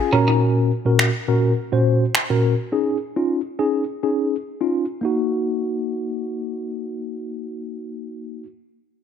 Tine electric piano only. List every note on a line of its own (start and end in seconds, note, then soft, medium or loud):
0.00 0.11 C#4 medium
0.00 0.13 F4 medium
0.00 0.13 G#4 medium
0.00 0.12 G#5 medium
0.12 0.70 A#2 medium
0.12 0.70 C#4 medium
0.12 0.70 F#4 medium
0.12 0.70 A#4 medium
0.12 0.39 A#5 medium
0.85 1.09 A#2 medium
0.85 1.09 C#4 medium
0.85 1.09 F#4 medium
0.85 1.09 A#4 medium
1.28 1.52 A#2 medium
1.28 1.52 C#4 medium
1.28 1.52 F#4 medium
1.28 1.52 A#4 medium
1.72 2.04 A#2 medium
1.72 2.04 C#4 medium
1.72 2.04 F#4 medium
1.72 2.04 C5 medium
2.30 2.53 A#2 medium
2.30 2.53 C#4 medium
2.30 2.54 F#4 medium
2.30 2.54 A#4 medium
2.72 2.96 C#4 medium
2.72 2.97 D#4 medium
2.72 2.97 G#4 medium
3.16 3.40 C#4 medium
3.16 3.40 D#4 medium
3.16 3.40 F4 medium
3.59 3.83 C#4 medium
3.59 3.83 D#4 medium
3.59 3.83 G#4 medium
4.03 4.35 C#4 medium
4.03 4.35 D#4 medium
4.03 4.35 G#4 medium
4.61 4.84 C#4 medium
4.61 4.84 D#4 medium
4.61 4.85 F4 medium
5.01 8.43 A#3 medium
5.01 8.45 D#4 medium
5.01 8.47 F#4 medium